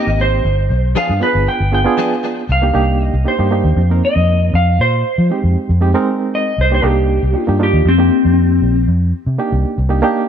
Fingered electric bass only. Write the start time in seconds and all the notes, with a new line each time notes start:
0.07 G#1
0.45 G1
0.70 B1
1.10 G2
1.35 G1
1.60 G1
2.49 C2
2.75 C2
3.14 C2
3.39 G2
3.64 D#2
3.76 F2
4.16 F2
4.54 F2
4.79 A#2
5.18 F3
5.44 F2
5.69 F2
6.58 C2
6.83 C2
7.23 C2
7.48 G2
7.73 D#2
7.85 F2
8.25 F2
8.62 A#1
8.88 F2
9.27 C3
9.52 C2
9.78 C2